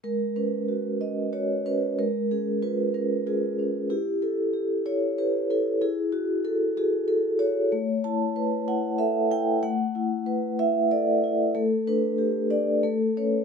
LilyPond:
\new Staff \with { instrumentName = "Vibraphone" } { \time 3/4 \key e \lydian \tempo 4 = 94 << { ais'8 b'4 dis''8 cis''8 b'8 | ais'8 gis'8 b'8 ais'8 gis'4 | g'8 a'4 cis''8 b'8 a'8 | gis'8 fis'8 a'8 gis'8 a'8 cis''8~ |
\key a \mixolydian cis''8 a''4 fis''8 e''8 g''8 | fis''4. e''8 d''8 r8 | a'8 b'4 d''8 a'8 cis''8 | } \\ { gis8 cis'8 fis'8 cis'8 fis'8 cis'8 | gis8 cis'8 eis'8 cis'8 eis'8 cis'8 | e'8 e'8 g'8 e'8 g'8 e'8 | e'4. fis'4 fis'8 |
a8 e'8 b'8 e'8 a'8 e'8 | a8 e'8 b'8 e'8 a'8 e'8 | a8 d'8 g'8 d'8 a8 <cis' b'>8 | } >> }